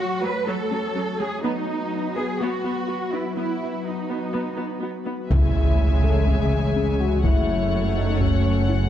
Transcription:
Already playing: F#3 A3 F#4 C#5
0.22 F#3 F#4 B4
0.47 F#3 A4
0.71 F#3 C#4
0.95 F#3 C#4
1.19 F#3 A3 G#4
1.43 F#3 B3 D#4 F#4 B4
2.16 B3 G#4 B4
2.40 B3 F#4
2.64 B3 F#4
2.88 B3 F#4
3.13 B3 D#4 E4
3.36 B3 E4
3.86 D#4
4.09 B3 B4
4.33 B3
4.58 B3 F#4
4.81 B3 F#4
5.06 B3 D#4
5.30 C#2 C#3 E3 G#3 E4 G#4 C#5 E5 G#5, taiko, impact
6.04 G#3 A4
6.26 C#3 G#4, taiko
6.76 C#4
6.99 C#4 F#4
7.23 F#1 F#2 F#3 A3 E4 F#4 C#5 F#5, taiko
7.96 C#4 D#4
8.19 F#3 C#4, taiko
8.69 E4

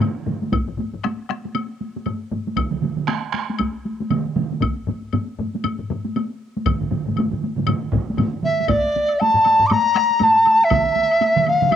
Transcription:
0.00 taiko low-mid, taiko mid, taiko high, high woodblock
0.26 taiko low-mid, taiko mid, taiko high
0.42 taiko high
0.52 taiko, taiko low-mid, taiko high, high woodblock
0.68 taiko low-mid
0.78 taiko low-mid, taiko high
0.94 taiko low-mid
1.03 taiko rim, taiko high, high woodblock
1.29 taiko rim, taiko high
1.45 taiko high
1.55 taiko high, high woodblock
1.81 taiko high
1.96 taiko high
2.06 taiko low-mid, taiko high, high woodblock
2.31 taiko low-mid, taiko high
2.47 taiko high
2.56 taiko, taiko mid, taiko high, high woodblock
2.71 taiko mid
2.82 taiko mid, taiko high
2.97 taiko mid
3.07 taiko rim, taiko high, high woodblock
3.33 taiko rim, taiko high
3.50 taiko high
3.59 taiko, taiko high, high woodblock
3.85 taiko high
4.00 taiko high
4.10 taiko mid, taiko high, high woodblock
4.36 taiko mid, taiko high
4.52 taiko high
4.61 taiko, taiko low-mid, taiko high, high woodblock
4.87 taiko low-mid, taiko high
5.13 taiko low-mid, taiko high, high woodblock
5.39 taiko low-mid, taiko high
5.55 taiko high
5.64 taiko low-mid, taiko high, high woodblock
5.79 taiko low-mid
5.90 taiko low-mid, taiko high
6.05 taiko high
6.16 taiko high, high woodblock
6.57 taiko high
6.66 taiko, taiko low-mid, taiko mid, taiko high, high woodblock
6.81 taiko low-mid, taiko mid
6.91 taiko low-mid, taiko mid, taiko high
7.06 taiko low-mid, taiko mid, taiko high
7.16 taiko low-mid, taiko mid, taiko high, high woodblock
7.31 taiko low-mid, taiko mid
7.44 taiko high
7.56 taiko low-mid, taiko mid, taiko high
7.66 taiko low-mid, taiko mid, taiko high, high woodblock
7.92 taiko, taiko low-mid, taiko mid, taiko high
8.10 taiko high
8.17 taiko low-mid, taiko mid, taiko high, high woodblock
8.43 E5, taiko low-mid, taiko mid, taiko high
8.60 taiko high
8.68 D5, taiko, taiko low-mid, taiko high, high woodblock
8.85 taiko high
8.96 taiko high
9.08 high woodblock
9.19 A5, taiko high, high woodblock
9.34 taiko low-mid, taiko high
9.45 taiko high, high woodblock
9.60 taiko low-mid, taiko high
9.66 D6, high woodblock
9.71 A#5, taiko low-mid, taiko high
9.85 taiko high
9.94 taiko rim, taiko high, high woodblock
10.11 taiko high
10.19 A5, taiko low-mid, taiko high, high woodblock
10.36 taiko high
10.45 taiko high, high woodblock
10.61 E5, taiko high
10.70 taiko, taiko mid, taiko high, high woodblock
10.86 taiko high
10.96 taiko high
11.11 high woodblock
11.21 taiko high, high woodblock
11.37 taiko mid
11.47 F5, taiko high, high woodblock
11.62 taiko mid, taiko high
11.71 E5, taiko mid, taiko high, high woodblock

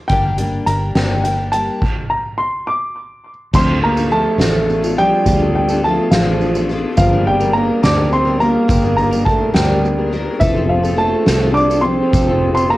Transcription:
0.08 G1 G2 D3 G3 G5, kick, closed hi-hat
0.12 A#3 D4 G4
0.38 G3 A#3 D4 G4, closed hi-hat
0.66 G1 G3 A#3 D4 G4 A#5, closed hi-hat
0.95 G1 G2 D3 G3 A#3 D4 G4, snare, closed hi-hat
1.24 G3 A#3 D4 G5, closed hi-hat
1.28 G4
1.52 A#3 D4 G4 A5, closed hi-hat
1.56 G3
1.81 kick, crash
2.10 A#5
2.38 C6
2.67 D6
3.53 D2 D3 F3 C4 D4 F4 A4 C6, kick, crash, tambourine
3.67 D4 F4 A4
3.82 A#3 A#5, ride
3.97 D4 F4 A4, tambourine
4.10 F3 A3 D4 F4 A4 A5, ride
4.38 A1 D3 F3 D4 F4 A4, snare, ride, tambourine
4.53 D4 F4 A4
4.69 ride, tambourine
4.82 D4 F4 A4, tambourine
4.97 F3 G3 D4 F4 A4 G5, ride
5.26 D2 D3 F3 D4 F4 A4, kick, ride, tambourine
5.42 D4 F4 A4
5.55 G3 G5, ride
5.69 F4 A4, tambourine
5.73 D4
5.84 F3 A3 D4 F4 A5, ride
5.88 A4
6.11 A1 D3 F3 D4 F4 F5, snare, ride, tambourine
6.15 A4
6.27 D4 F4 A4
6.41 ride, tambourine
6.55 F4 A4, tambourine
6.59 D4
6.69 F3 D4 F4 A4, ride, tambourine
6.96 G1 G2 D3 F3 G3 A#3 D4 A#4 F5, kick, ride, tambourine
7.13 G3 A#3 D4 A#4
7.26 G3 G5, ride
7.40 A#3 D4 A#4, tambourine
7.44 G3
7.53 G3 A#3 D4 A#5, ride
7.58 A#4
7.83 D2 G2 D3 G3 A#3 D4 A#4 D6, snare, ride, tambourine
7.97 G3 A#3 D4 A#4
8.11 C4 C6, ride, tambourine
8.25 G3 A#3 D4 A#4
8.40 G3 A#3 D4 A#4 A#5, ride, tambourine
8.68 G1 G2 D3 G3 A#3 D4 A#4, kick, ride, tambourine
8.83 G3 A#3 D4 A#4, tambourine
8.97 A#3 A#5, ride, tambourine
9.11 G3 A#3 D4 A#4, tambourine
9.25 G3 A3 A#3 D4 A#4 A5, kick, ride
9.54 D2 G2 D3 G3 A#3 D4 A#4 G5, snare, ride, tambourine
9.68 G3 A#3 D4 A#4
9.83 ride, tambourine
9.98 G3 A#3 D4 A#4
10.12 G3 A#3 D4 A#4, ride, tambourine
10.39 F1 E3 F3 C4 F4 A4 E5, kick, ride, tambourine
10.55 C4 F4 A4
10.66 F3 F5, ride
10.83 C4 F4 A4, tambourine
10.96 F3 A3 C4 F4 A4 A5, ride
11.26 C2 F3 C4 F4 A4, snare, ride, tambourine
11.40 C4 F4 A4
11.53 D4 D6, ride
11.57 tambourine
11.70 C4 F4 A4, tambourine
11.81 F3 C4 C6, ride, tambourine
11.86 C4 F4 A4
12.13 F1 F3 C4 F4 A4, kick, ride, tambourine
12.27 C4 F4 A4
12.42 ride
12.54 C4 F4 A4 C6, tambourine
12.58 C4
12.69 F3 A#3 C4 F4 A4 A#5, ride

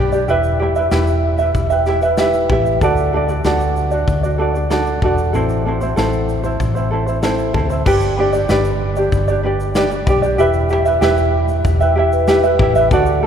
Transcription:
Already playing: B1 D4
0.00 G4 D5
0.12 D4 G4 D5, shaker
0.28 E1 E4 G4 B4 E5, shaker
0.43 shaker
0.60 E4 G4 E5
0.76 E4 B4 E5, shaker
0.91 E1 E4 G4 B4 E5, snare, shaker
1.07 shaker
1.38 B4 E5, shaker
1.42 E4
1.55 E1, kick, shaker
1.70 E4 B4 E5 G5, shaker
1.86 E4 G4 E5, snare, shaker
2.01 B4 E5, shaker
2.06 E4
2.17 E4 G4 B4 E5, snare, shaker
2.33 shaker
2.49 A1 E4 G4 E5, kick
2.66 shaker
2.81 D2 D4 F#4 A4 D5, kick, shaker
2.97 shaker
3.13 D4 F#4 A4 D5
3.29 D4 F#4 D5, shaker
3.44 D2 D4 F#4 A4 D5, snare, shaker
3.60 shaker
3.76 shaker
3.91 D4 F#4 D5, shaker
4.08 D2, kick, shaker
4.23 D4 F#4 D5, shaker
4.38 D4 F#4 A4 D5
4.54 D4 D5, shaker
4.70 D4 F#4 A4 D5, snare, shaker
4.86 shaker
5.02 E1 D4 F#4 A4 D5, kick
5.18 shaker
5.33 A1 C4 E4 A4 C5, shaker
5.49 shaker
5.65 C4 E4 A4 C5
5.81 C4 E4 C5, shaker
5.96 A1 C4 E4 A4 C5, snare, shaker
6.13 shaker
6.29 shaker
6.43 C4 E4 C5, shaker
6.60 A1, kick, shaker
6.75 C4 E4 C5, shaker
6.91 C4 E4 A4 C5
7.06 C4 E4 C5, shaker
7.22 C4 E4 A4 C5, snare, shaker
7.38 shaker
7.53 D2 C4 E4 A4 C5, kick
7.70 C4 E4 C5, shaker
7.86 G1 D4 G4 B4 D5, kick, crash
8.01 shaker
8.17 D4 G4 B4 D5
8.33 D4 G4 D5, shaker
8.49 G1 D4 G4 B4 D5, snare, shaker
8.65 shaker
8.96 D4 G4 D5, shaker
9.12 G1, kick, shaker
9.28 D4 G4 D5, shaker
9.43 D4 G4 B4 D5
9.60 shaker
9.75 D4 G4 B4 D5, snare, shaker
9.91 G4 D5, shaker
9.95 D4
10.06 B1 D4 G4 B4 D5, kick, shaker
10.22 D4 G4 D5, shaker
10.38 E1 E4 G4 B4 E5, shaker
10.53 shaker
10.69 E4 G4, shaker
10.73 E5
10.85 E4 B4 E5, shaker
11.01 E1 E4 G4 B4 E5, snare, shaker
11.17 shaker
11.48 shaker
11.65 E1, kick, shaker
11.79 B4 E5 G5, shaker
11.84 E4
11.95 E4 G4 E5
12.12 B4, shaker
12.28 E4 G4 B4 E5, snare, shaker
12.43 E4 B4 E5, shaker
12.59 A1 E4 G4 E5, kick
12.75 E4 B4 E5, shaker
12.91 D2 D4 F#4 A4 D5, kick, shaker
13.06 shaker
13.23 A4

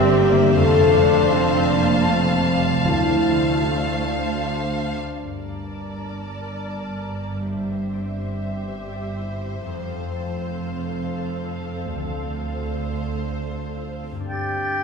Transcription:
Already playing: G1 G2 D3 C4 E4 G4 C5 D5 E5
0.06 D4
0.19 A#3
0.31 D3
0.56 F1 F2 A3 A4 F5 A5
0.82 C3
0.94 D4
1.06 C4
1.31 C4 D4 F4
1.57 C5
1.68 A#3
1.82 F3
2.07 C3 A3 C4
2.46 G3
2.59 C3
2.84 D2 D3 A3 E4 C5
3.13 D4
3.65 D4 F4
3.92 C5
4.46 D4
4.98 D4
5.23 G1 G2 A#4 D5 A5
5.49 A#3
5.74 D5
5.98 A#4
6.23 A5
6.48 A#4
6.72 D5
6.96 A4
7.21 A#3
7.45 G2 G4 C5 E5
7.70 C4
7.94 D5
8.19 C5
8.43 E5
8.68 C5
8.92 D5
9.16 E4
9.41 C4
9.65 F1 F2 A4 F5
9.91 C4
10.16 A4
10.41 C5
10.67 F5
10.92 C5
11.18 A4
11.43 F4
11.69 C4
11.95 D2 D3 C5
12.22 C4
12.48 A4
12.74 C5
12.99 F5
13.25 C5
13.51 A4
13.77 F4
14.03 C4
14.11 G2
14.15 A#3
14.20 D4
14.24 A4
14.29 G4 G5 A6

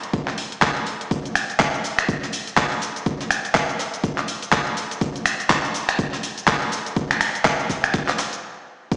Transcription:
0.03 closed hi-hat
0.13 kick, closed hi-hat
0.28 snare, clap
0.38 closed hi-hat, open hi-hat
0.52 closed hi-hat
0.62 kick, snare, clap, closed hi-hat
0.77 closed hi-hat
0.86 closed hi-hat, open hi-hat
1.01 closed hi-hat
1.11 kick, closed hi-hat, cabasa
1.25 closed hi-hat, cabasa
1.35 finger snap, closed hi-hat, open hi-hat, cabasa
1.50 closed hi-hat, cabasa
1.59 kick, snare, clap, closed hi-hat, cabasa
1.74 closed hi-hat, cabasa
1.84 closed hi-hat, open hi-hat, cabasa
1.99 finger snap, snare, closed hi-hat, cabasa
2.09 kick, closed hi-hat, cabasa
2.23 snare, cabasa
2.32 closed hi-hat, open hi-hat, cabasa
2.47 closed hi-hat, cabasa
2.57 kick, snare, clap, open hi-hat, cabasa
2.72 closed hi-hat
2.82 closed hi-hat, open hi-hat, cabasa
2.96 closed hi-hat, cabasa
3.06 kick, closed hi-hat, cabasa
3.21 snare, closed hi-hat, cabasa
3.31 finger snap, closed hi-hat, open hi-hat, cabasa
3.45 closed hi-hat, cabasa
3.55 kick, snare, clap, closed hi-hat, cabasa
3.69 closed hi-hat, cabasa
3.79 snare, closed hi-hat, open hi-hat, cabasa
3.94 closed hi-hat, cabasa
4.04 kick, closed hi-hat, cabasa
4.18 snare, clap, cabasa
4.28 closed hi-hat, open hi-hat, cabasa
4.42 closed hi-hat, cabasa
4.52 kick, snare, clap, closed hi-hat, cabasa
4.67 closed hi-hat
4.77 closed hi-hat, open hi-hat, cabasa
4.91 closed hi-hat, cabasa
5.01 kick, closed hi-hat, cabasa
5.16 closed hi-hat, cabasa
5.26 finger snap, closed hi-hat, open hi-hat, cabasa
5.40 closed hi-hat, cabasa
5.50 kick, snare, clap, closed hi-hat, cabasa
5.64 closed hi-hat, cabasa
5.74 closed hi-hat, open hi-hat, cabasa
5.89 finger snap, snare, closed hi-hat, cabasa
5.99 kick, closed hi-hat, cabasa
6.13 snare, cabasa
6.23 closed hi-hat, open hi-hat, cabasa
6.38 closed hi-hat, cabasa
6.47 kick, snare, clap, open hi-hat, cabasa
6.62 closed hi-hat
6.72 closed hi-hat, open hi-hat, cabasa
6.86 closed hi-hat, cabasa
6.96 kick, closed hi-hat, cabasa
7.11 finger snap, snare, closed hi-hat, cabasa
7.21 finger snap, closed hi-hat, open hi-hat, cabasa
7.35 closed hi-hat, cabasa
7.45 kick, snare, clap, closed hi-hat, cabasa
7.60 closed hi-hat, cabasa
7.69 kick, snare, closed hi-hat, open hi-hat, cabasa
7.84 finger snap, closed hi-hat, cabasa
7.93 kick, snare, closed hi-hat, cabasa
8.08 snare, clap, closed hi-hat, cabasa
8.18 snare, closed hi-hat, open hi-hat, cabasa
8.33 closed hi-hat, cabasa
8.92 kick, closed hi-hat, cabasa

